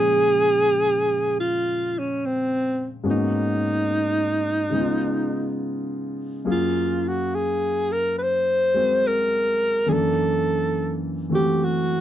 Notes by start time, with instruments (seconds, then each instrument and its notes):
Already playing: grand piano A#2 C#3 F3 G#3 C5, alto saxophone G#4
1.40 alto saxophone F4
1.98 alto saxophone C#4
2.26 alto saxophone C4
3.04 grand piano G#2 G#3 A#3 B3 C#4 F#4
3.11 alto saxophone D#4
4.70 grand piano C#3 G#3
4.75 grand piano B3 D#4
4.81 grand piano F4
6.45 grand piano F#2 F#3 A#3 G#4 F5
6.51 alto saxophone F4
7.08 alto saxophone F#4
7.35 alto saxophone G#4
7.92 alto saxophone A#4
8.18 alto saxophone B4
8.23 alto saxophone C5
8.74 grand piano G#3 C4 F#4 A#4
9.07 alto saxophone A#4
9.86 grand piano F#2 E3 A#3 D4, alto saxophone G#4
9.90 grand piano A4, alto saxophone A4
11.30 grand piano E3 A3 C4 F#4
11.35 alto saxophone G4
11.64 alto saxophone F#4